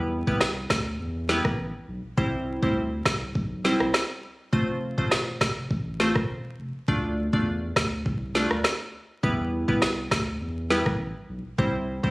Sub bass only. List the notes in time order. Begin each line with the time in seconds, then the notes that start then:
Already playing: E2
0.27 C2
0.70 D2
1.00 E2
1.45 A1
1.88 B1
2.18 C2
2.63 D2
3.06 C2
3.35 B1
3.80 C2
4.53 F1
4.98 E1
5.41 F1
5.71 A1
6.16 E1
6.59 F1
6.88 D2
7.33 E2
7.76 D2
8.06 C2
8.51 D2
9.23 E2
9.69 C2
10.11 D2
10.41 E2
10.86 A1
11.29 B1
11.59 C2
12.04 D2